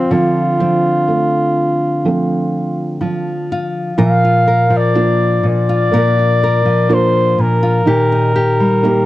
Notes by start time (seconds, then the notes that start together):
Already playing: F3 A3 C4 F4
0.11 D3 F3 C4 F4
0.60 F3 C4
1.08 A3
2.05 F3 A3 C4
3.01 F3
3.52 F4
3.98 A#2 F3 A#4 F5
4.25 F4
4.48 A#4
4.70 F3
4.77 D5
4.94 A#3 D4 F4
5.43 A#2
5.48 D5
5.69 F4
5.91 A#2 A#3 A#4
6.19 F4
6.43 A#4
6.65 F3
6.89 A#3 D4 F4
6.93 C5
7.38 A#2 A#4
7.63 F4
7.86 A#2 D#3 G4
8.12 D#4
8.36 G4
8.60 G3
8.83 A#3 D#4 G4